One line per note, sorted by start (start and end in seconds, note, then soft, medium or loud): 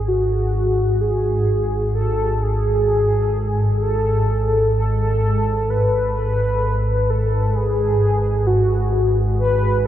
0.00 9.87 G#1 medium
0.00 9.87 G#2 medium
0.08 1.02 F#4 medium
1.01 1.94 G#4 loud
1.95 2.44 A4 loud
2.43 3.82 G#4 loud
3.82 4.71 A4 loud
4.76 5.72 A4 loud
5.70 7.12 B4 loud
7.10 7.57 A4 medium
7.56 8.48 G#4 loud
8.47 9.16 F#4 medium
9.39 9.87 B4 loud